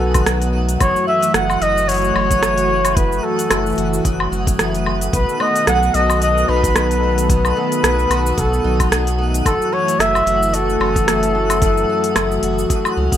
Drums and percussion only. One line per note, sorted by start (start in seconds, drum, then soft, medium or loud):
0.14 kick loud
0.14 open hi-hat soft
0.14 low woodblock medium
0.14 shaker medium
0.26 cross-stick loud
0.26 open hi-hat medium
0.26 shaker medium
0.42 open hi-hat soft
0.42 shaker soft
0.69 open hi-hat soft
0.69 shaker medium
0.80 kick loud
0.80 open hi-hat medium
0.80 low woodblock medium
0.80 shaker medium
0.96 shaker soft
1.23 open hi-hat soft
1.23 shaker medium
1.34 cross-stick loud
1.34 open hi-hat medium
1.34 shaker medium
1.50 low woodblock medium
1.50 shaker soft
1.62 open hi-hat soft
1.78 shaker medium
1.89 open hi-hat soft
1.89 shaker medium
1.91 open hi-hat soft
1.94 open hi-hat soft
1.96 open hi-hat soft
1.98 open hi-hat soft
2.04 shaker soft
2.16 low woodblock medium
2.31 kick medium
2.31 open hi-hat soft
2.31 shaker medium
2.43 cross-stick loud
2.43 open hi-hat medium
2.43 shaker medium
2.58 open hi-hat soft
2.58 shaker soft
2.85 open hi-hat soft
2.85 low woodblock medium
2.85 shaker medium
2.97 kick loud
2.97 open hi-hat medium
2.97 shaker medium
3.12 shaker soft
3.39 open hi-hat soft
3.39 shaker medium
3.51 cross-stick medium
3.51 open hi-hat medium
3.51 low woodblock medium
3.51 shaker medium
3.66 shaker soft
3.69 shaker soft
3.72 shaker soft
3.75 open hi-hat soft
3.75 shaker soft
3.94 shaker medium
4.05 kick loud
4.05 open hi-hat soft
4.05 shaker medium
4.20 low woodblock medium
4.33 shaker soft
4.47 kick loud
4.47 open hi-hat soft
4.47 shaker medium
4.59 cross-stick loud
4.59 open hi-hat medium
4.59 shaker medium
4.74 open hi-hat soft
4.74 shaker soft
4.86 low woodblock medium
5.01 open hi-hat soft
5.01 shaker medium
5.13 kick loud
5.13 open hi-hat medium
5.13 shaker medium
5.29 shaker soft
5.40 low woodblock medium
5.56 open hi-hat soft
5.56 shaker medium
5.67 cross-stick medium
5.67 open hi-hat soft
5.67 shaker medium
5.83 shaker soft
5.94 open hi-hat soft
6.10 low woodblock medium
6.10 shaker medium
6.22 open hi-hat medium
6.22 shaker soft
6.38 shaker soft
6.64 kick loud
6.64 open hi-hat soft
6.64 shaker medium
6.76 cross-stick loud
6.76 open hi-hat medium
6.76 low woodblock medium
6.76 shaker medium
6.91 open hi-hat soft
6.91 shaker soft
7.18 open hi-hat soft
7.18 shaker medium
7.29 kick loud
7.29 open hi-hat medium
7.29 shaker medium
7.45 low woodblock medium
7.45 shaker soft
7.72 open hi-hat soft
7.72 shaker medium
7.84 cross-stick loud
7.84 open hi-hat medium
7.84 shaker medium
7.99 shaker soft
8.11 open hi-hat medium
8.11 low woodblock medium
8.26 shaker medium
8.38 kick medium
8.38 open hi-hat medium
8.38 shaker medium
8.54 shaker soft
8.80 kick loud
8.80 open hi-hat soft
8.80 low woodblock medium
8.80 shaker medium
8.92 cross-stick loud
8.92 open hi-hat medium
8.92 shaker medium
9.07 open hi-hat soft
9.07 shaker soft
9.34 open hi-hat soft
9.34 shaker medium
9.46 kick loud
9.46 open hi-hat medium
9.46 low woodblock medium
9.46 shaker medium
9.62 shaker soft
9.88 open hi-hat soft
9.88 shaker medium
10.00 cross-stick loud
10.00 open hi-hat medium
10.00 shaker medium
10.15 low woodblock medium
10.15 shaker soft
10.27 open hi-hat medium
10.43 shaker medium
10.54 open hi-hat medium
10.54 shaker medium
10.70 shaker soft
10.81 low woodblock medium
10.96 kick medium
10.96 open hi-hat soft
10.96 shaker medium
11.08 cross-stick loud
11.08 open hi-hat medium
11.08 shaker medium
11.23 open hi-hat soft
11.23 shaker soft
11.50 open hi-hat soft
11.50 low woodblock medium
11.50 shaker medium
11.62 kick loud
11.62 open hi-hat medium
11.62 shaker medium
11.77 shaker soft
12.04 open hi-hat soft
12.16 cross-stick loud
12.16 open hi-hat medium
12.16 low woodblock medium
12.16 shaker medium
12.32 shaker soft
12.43 open hi-hat medium
12.59 shaker medium
12.70 kick loud
12.70 open hi-hat medium
12.70 shaker soft
12.85 low woodblock medium
12.85 shaker soft
13.12 kick medium
13.12 open hi-hat soft
13.12 shaker medium